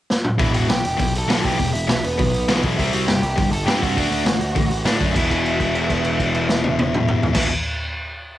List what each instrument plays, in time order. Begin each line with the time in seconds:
0.10 snare
0.24 mid tom
0.38 picked electric bass E1, distorted electric guitar E2 B2 E3, lead electric guitar E4 E5, kick, open hi-hat
0.54 picked electric bass E1, lead electric guitar F#4 F#5, open hi-hat
0.69 picked electric bass B1, distorted electric guitar E2 B2, lead electric guitar G4 G5, snare, open hi-hat
0.83 picked electric bass E1, lead electric guitar G4 G5, open hi-hat
0.97 picked electric bass B1, distorted electric guitar E2 B2, kick, open hi-hat
1.15 lead electric guitar A4 A5, open hi-hat
1.28 picked electric bass B1, distorted electric guitar E2 B2 E3, lead electric guitar A4 A5, snare, open hi-hat
1.44 picked electric bass B1, lead electric guitar G4 G5, kick, open hi-hat
1.58 picked electric bass E1, distorted electric guitar E2 B2, kick, open hi-hat
1.73 picked electric bass E1, lead electric guitar E4 E5, open hi-hat
1.87 picked electric bass B1, distorted electric guitar E2 B2, lead electric guitar E4 E5, snare, open hi-hat
2.04 picked electric bass E1, lead electric guitar B3 B4, open hi-hat
2.18 picked electric bass B1, distorted electric guitar E2 B2, kick, open hi-hat
2.34 open hi-hat
2.48 picked electric bass B1, distorted electric guitar E2 B2 E3, snare, open hi-hat
2.63 picked electric bass B1, kick, open hi-hat
2.77 picked electric bass C2, distorted electric guitar C3 G3 C4, lead electric guitar E4 E5, kick, open hi-hat
2.93 picked electric bass C2, lead electric guitar F#4 F#5, open hi-hat
3.07 picked electric bass G1, distorted electric guitar C3 G3, lead electric guitar G4 G5, snare, open hi-hat
3.22 picked electric bass C2, lead electric guitar G4 G5, open hi-hat
3.36 picked electric bass G1, distorted electric guitar C3 G3, kick, open hi-hat
3.52 lead electric guitar A4 A5, open hi-hat
3.64 picked electric bass G2, distorted electric guitar C3 G3 C4, lead electric guitar G4 G5, snare, open hi-hat
3.81 picked electric bass G2, lead electric guitar F#4 F#5, kick, open hi-hat
3.96 picked electric bass D2, distorted electric guitar D3 A3 D4, kick, open hi-hat
4.10 picked electric bass D2, open hi-hat
4.25 picked electric bass A1, distorted electric guitar D3 A3, snare, open hi-hat
4.41 picked electric bass D2, open hi-hat
4.55 picked electric bass A1, distorted electric guitar D3 A3, kick, open hi-hat
4.71 open hi-hat
4.84 picked electric bass A2, distorted electric guitar D3 A3 D4, snare, open hi-hat
5.01 picked electric bass F#2, kick, open hi-hat
5.13 picked electric bass E1, distorted electric guitar E2 B2, lead electric guitar E5, kick, crash
5.19 distorted electric guitar E3
5.30 kick, crash
5.46 crash
5.60 kick, crash
5.75 crash
5.90 kick, crash
6.04 crash
6.20 kick, crash
6.34 crash
6.49 snare
6.64 high tom
6.79 high tom
6.94 mid tom
7.08 mid tom
7.23 floor tom
7.33 picked electric bass E1, distorted electric guitar E2 B2, lead electric guitar E5, kick, snare, crash
7.38 distorted electric guitar E3